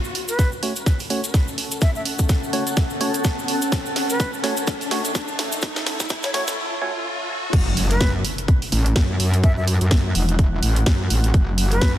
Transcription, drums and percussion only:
0.04 cabasa
0.15 open hi-hat
0.28 closed hi-hat, cabasa
0.39 kick, snare, closed hi-hat, cabasa
0.52 cabasa
0.63 open hi-hat
0.76 closed hi-hat, cabasa
0.86 kick, snare, closed hi-hat, cabasa
0.99 open hi-hat, cabasa
1.10 open hi-hat
1.24 closed hi-hat, cabasa
1.34 kick, snare, closed hi-hat, cabasa
1.48 cabasa
1.58 open hi-hat
1.72 closed hi-hat, cabasa
1.81 kick, snare, closed hi-hat, cabasa
1.95 cabasa
2.05 open hi-hat
2.19 kick, closed hi-hat, cabasa
2.29 kick, snare, closed hi-hat, cabasa
2.44 cabasa
2.53 open hi-hat
2.67 closed hi-hat, cabasa
2.77 kick, snare, closed hi-hat, cabasa
2.90 cabasa
3.01 open hi-hat
3.14 closed hi-hat, cabasa
3.24 kick, snare, closed hi-hat, cabasa
3.39 cabasa
3.48 open hi-hat
3.62 closed hi-hat, cabasa
3.72 kick, snare, closed hi-hat, cabasa
3.86 cabasa
3.96 snare, open hi-hat
4.10 closed hi-hat, cabasa
4.20 kick, snare, closed hi-hat, cabasa
4.34 cabasa
4.44 snare, open hi-hat
4.57 closed hi-hat, cabasa
4.67 kick, snare, closed hi-hat, cabasa
4.81 open hi-hat, cabasa
4.91 snare, open hi-hat
5.05 closed hi-hat, cabasa
5.15 kick, snare, closed hi-hat, cabasa
5.28 cabasa
5.39 snare, open hi-hat
5.52 closed hi-hat, cabasa
5.61 kick, snare, closed hi-hat, cabasa
5.76 snare, cabasa
5.86 snare, open hi-hat
6.00 kick, snare, closed hi-hat, cabasa
6.09 kick, snare, closed hi-hat, cabasa
6.23 snare, cabasa
6.34 snare, open hi-hat
6.48 snare, closed hi-hat, cabasa
7.53 kick, closed hi-hat, crash
7.77 open hi-hat
7.91 closed hi-hat
8.01 kick, snare, closed hi-hat
8.25 open hi-hat
8.38 closed hi-hat
8.48 kick, closed hi-hat
8.62 open hi-hat
8.72 open hi-hat
8.86 closed hi-hat
8.96 kick, snare, closed hi-hat
9.20 open hi-hat
9.34 closed hi-hat
9.44 kick, closed hi-hat
9.68 open hi-hat
9.81 closed hi-hat
9.91 kick, snare, closed hi-hat
10.15 open hi-hat
10.29 closed hi-hat
10.39 kick, closed hi-hat
10.63 open hi-hat
10.76 closed hi-hat
10.86 kick, snare, open hi-hat
11.10 open hi-hat
11.24 closed hi-hat
11.34 kick, closed hi-hat
11.58 open hi-hat
11.72 closed hi-hat
11.81 kick, snare, closed hi-hat

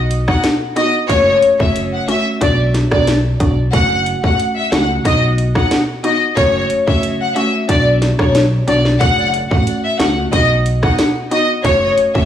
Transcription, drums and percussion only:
0.11 closed hi-hat
0.28 kick, cross-stick
0.44 snare, closed hi-hat
0.76 closed hi-hat
1.09 kick, closed hi-hat
1.42 closed hi-hat
1.60 kick
1.76 closed hi-hat
2.09 closed hi-hat
2.41 kick, closed hi-hat
2.74 snare, closed hi-hat
2.91 kick, cross-stick
3.07 snare, closed hi-hat
3.40 kick, closed hi-hat
3.73 kick, closed hi-hat
4.06 closed hi-hat
4.24 kick
4.40 closed hi-hat
4.72 snare, closed hi-hat
5.05 kick, closed hi-hat
5.38 closed hi-hat
5.55 kick, cross-stick
5.71 snare, closed hi-hat
6.04 closed hi-hat
6.37 kick, closed hi-hat
6.70 closed hi-hat
6.88 kick
7.03 closed hi-hat
7.36 closed hi-hat
7.69 kick, closed hi-hat
8.02 snare, closed hi-hat
8.19 kick, cross-stick
8.35 snare, closed hi-hat
8.68 closed hi-hat
8.85 snare
9.01 kick, closed hi-hat
9.34 closed hi-hat
9.51 kick
9.67 closed hi-hat
10.00 snare, closed hi-hat
10.33 kick, closed hi-hat
10.66 closed hi-hat
10.83 kick, cross-stick
10.99 snare, closed hi-hat
11.31 closed hi-hat
11.65 kick, closed hi-hat
11.98 closed hi-hat
12.15 kick

